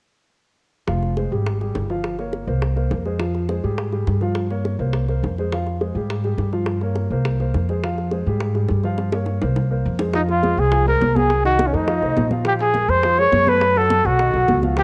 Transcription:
0.87 upright bass F1, grand piano F3 F4 F5, high bongo
1.03 high bongo
1.17 grand piano G#3 G#4 C5, high bongo
1.32 upright bass G#1, grand piano G3 G4 G#4
1.47 high bongo
1.61 grand piano G3 G4 G#4, high bongo
1.75 upright bass G1, high bongo, low bongo
1.90 grand piano F3 F4 F5, high bongo
2.04 high bongo
2.19 grand piano A#3 A#4 C#5, high bongo
2.33 high bongo
2.47 upright bass C2, grand piano A#3 A#4 C5
2.62 high bongo
2.76 grand piano A#3 A#4 C5, high bongo
2.91 upright bass F2, high bongo, low bongo
3.05 grand piano G#3 G#4 C5, high bongo
3.19 grand piano F3 F4 F5, high bongo
3.34 high bongo
3.49 grand piano G#3 G#4 C5, high bongo
3.63 upright bass G#2, grand piano G3 G4 G#4
3.78 high bongo
3.92 grand piano G3 G4 G#4, high bongo
4.07 upright bass G2, high bongo, low bongo
4.21 grand piano F3 F4 F5, high bongo
4.35 high bongo
4.50 grand piano A#3 A#4 C#5, high bongo
4.65 high bongo
4.79 upright bass C2, grand piano A#3 A#4 C5
4.93 high bongo
5.09 grand piano A#3 A#4 C5, high bongo
5.23 upright bass F2, high bongo, low bongo
5.38 grand piano G#3 G#4 C5, high bongo
5.53 grand piano F3 F4 F5, high bongo
5.67 high bongo
5.81 grand piano G#3 G#4 C5, high bongo
5.95 upright bass G#2, grand piano G3 G4 G#4
6.10 high bongo
6.24 grand piano G3 G4 G#4, high bongo
6.38 upright bass G2, high bongo, low bongo
6.53 grand piano F3 F4 F5, high bongo
6.66 high bongo
6.81 grand piano A#3 A#4 C#5, high bongo
6.95 high bongo
7.10 upright bass C2, grand piano A#3 A#4 C5
7.25 high bongo
7.40 grand piano A#3 A#4 C5, high bongo
7.54 upright bass F2, high bongo, low bongo
7.69 grand piano G#3 G#4 C5, high bongo
7.83 grand piano F3 F4 F5, high bongo
7.98 high bongo
8.11 grand piano G#3 G#4 C5, high bongo
8.26 upright bass G#2, grand piano G3 G4 G#4
8.40 high bongo
8.55 grand piano G3 G4 G#4, high bongo
8.68 upright bass G2, high bongo, low bongo
8.83 grand piano F3 F4 F5, high bongo
8.98 high bongo
9.12 grand piano A#3 A#4 C#5, high bongo
9.26 low bongo
9.42 upright bass C2, grand piano A#3 A#4 C5, low bongo
9.56 low bongo
9.71 grand piano A#3 A#4 C5
9.85 upright bass F2
9.99 grand piano G#3 G#4 C5, low bongo
10.14 grand piano F3 F4 F5, trumpet D#4, flute D#5, high bongo, high conga
10.29 trumpet F4, flute F5, high bongo, high conga
10.43 grand piano G#3 G#4 C5, high bongo, high conga
10.57 upright bass C2, trumpet G#4, flute G#5, high conga
10.71 grand piano F3 F4 F5, high bongo, high conga
10.86 grand piano G#3 G#4 C5, trumpet A#4, flute A#5, high bongo, high conga
11.01 upright bass C2, high bongo, low bongo, high conga
11.14 grand piano F#3 F#4 A#4, trumpet G#4, flute G#5, high bongo, high conga
11.30 high bongo, high conga
11.44 grand piano D#3 D#4 D#5, trumpet F#4, flute F#5, high bongo, high conga
11.59 high bongo, high conga
11.67 trumpet C#4, flute C#5
11.72 upright bass F2, grand piano A3 A4 C5, trumpet D#4, flute D#5, high conga
11.87 grand piano F3 F4 F5, high bongo, high conga
12.02 upright bass C2, grand piano A3 A4 C5, high bongo, high conga
12.17 upright bass A#1, high bongo, low bongo, high conga
12.31 grand piano F3 F4 F5, high bongo, high conga
12.45 grand piano F3 F4 F5, trumpet G4, flute G5, high bongo, high conga
12.60 trumpet G#4, flute G#5, high bongo, high conga
12.74 grand piano G#3 G#4 A#4, high bongo, high conga
12.89 upright bass F2, trumpet C5, flute C6, high conga
13.03 grand piano F3 F4 F5, high bongo, high conga
13.18 grand piano G#3 G#4 A#4, trumpet C#5, flute C#6, high bongo, high conga
13.32 upright bass F#2, high bongo, low bongo, high conga
13.47 grand piano A3 A4 C#5, trumpet B4, flute B5, high bongo, high conga
13.61 high bongo, high conga
13.76 grand piano F#3 F#4 F#5, trumpet A4, flute A5, high bongo, high conga
13.90 high bongo, high conga
14.05 upright bass B1, grand piano F#3 F#4 A4, trumpet F#4, flute F#5, high conga
14.19 grand piano D#3 D#4 D#5, high bongo, high conga
14.34 upright bass B1, grand piano F#3 F#4 A4, high bongo, high conga
14.48 upright bass C#2, high bongo, low bongo, high conga
14.62 grand piano F3 F4 F5, high bongo, high conga
14.77 grand piano F3 F4 F5, trumpet G4, flute G5, high bongo, high conga

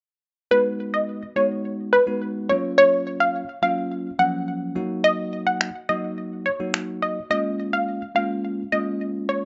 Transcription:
0.51 tine electric piano G#3 B3 D#4 F#4, synth pluck B4
0.94 synth pluck D#5
1.36 tine electric piano G#3 B3 D#4 F#4, synth pluck C#5
1.93 synth pluck B4
2.07 tine electric piano G#3 B3 D#4 F#4
2.49 tine electric piano F#3 A#3 C#4 F4, synth pluck C#5
2.78 synth pluck C#5
3.20 synth pluck F5
3.62 tine electric piano F#3 A#3 C#4 F4, synth pluck F5
4.19 tine electric piano F3 F#3 A#3 C#4, synth pluck F#5
4.76 tine electric piano F#3 A#3 D#4 F#4
5.04 synth pluck D#5
5.47 synth pluck F#5
5.61 finger snap
5.89 tine electric piano F#3 A#3 D#4 F#4, synth pluck D#5
6.46 synth pluck C#5
6.60 tine electric piano F#3 A#3 D#4 F#4
6.74 finger snap
7.02 synth pluck D#5
7.30 tine electric piano G#3 A#3 C#4 F4, synth pluck D#5
7.73 synth pluck F5
8.15 tine electric piano G#3 A#3 C#4 F4, synth pluck F5
8.72 tine electric piano G#3 A#3 C#4 F4, synth pluck D#5
9.29 synth pluck C#5

